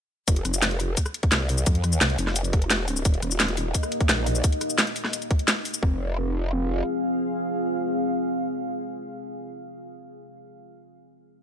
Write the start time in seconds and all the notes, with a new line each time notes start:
0.28 F1, kick, closed hi-hat, cabasa
0.36 closed hi-hat
0.45 F1, cross-stick, closed hi-hat, cabasa
0.54 cabasa
0.62 snare, closed hi-hat, cabasa
0.71 closed hi-hat
0.80 open hi-hat, cabasa
0.97 kick, closed hi-hat, cabasa
1.06 cross-stick, cabasa
1.14 closed hi-hat
1.23 kick, closed hi-hat
1.32 C2, snare, closed hi-hat, cabasa
1.49 open hi-hat, cabasa
1.58 cabasa
1.66 F2, kick, closed hi-hat, cabasa
1.75 closed hi-hat
1.84 cross-stick, closed hi-hat, cabasa
1.92 cabasa
2.01 C2, snare, closed hi-hat, cabasa
2.10 closed hi-hat
2.18 F1, open hi-hat, cabasa
2.27 cross-stick, snare
2.36 closed hi-hat, cabasa
2.44 closed hi-hat, cabasa
2.53 kick, closed hi-hat
2.62 closed hi-hat
2.70 snare, closed hi-hat, cabasa
2.88 open hi-hat, cabasa
2.97 cabasa
3.05 D#1 A#3 D#4 G4 D#5, kick, closed hi-hat, cabasa
3.14 closed hi-hat
3.22 D#1, cross-stick, closed hi-hat, cabasa
3.31 cabasa
3.40 snare, closed hi-hat, cabasa
3.48 closed hi-hat
3.57 open hi-hat, cabasa
3.74 kick, closed hi-hat, cabasa
3.83 cross-stick, cabasa
3.92 closed hi-hat
4.00 kick, closed hi-hat
4.09 A#1, snare, closed hi-hat, cabasa
4.27 open hi-hat, cabasa
4.35 cabasa
4.44 kick, closed hi-hat, cabasa
4.53 closed hi-hat
4.61 cross-stick, closed hi-hat, cabasa
4.70 cabasa
4.78 snare, closed hi-hat, cabasa
4.87 closed hi-hat
4.96 open hi-hat, cabasa
5.05 cross-stick, snare
5.13 closed hi-hat, cabasa
5.22 closed hi-hat, cabasa
5.31 kick, closed hi-hat
5.39 closed hi-hat
5.48 snare, closed hi-hat, cabasa
5.65 open hi-hat, cabasa
5.74 cabasa
5.82 F1 C4 F4 G#4 F5, kick